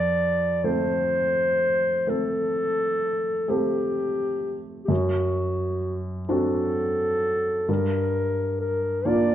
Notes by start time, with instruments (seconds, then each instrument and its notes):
Already playing: grand piano F2, clarinet D5
0.64 grand piano A3 C4 A4, clarinet C5
2.07 grand piano A3 C4 A4, clarinet A4
3.48 grand piano A3 C4 A4, clarinet G4
4.85 grand piano F#2, clarinet G4
4.91 clarinet F#4
6.29 grand piano C4 D4 F#4, clarinet A4
7.69 grand piano G2, clarinet A#4
8.61 clarinet A#4
9.05 grand piano A#3 D4 F4, clarinet D5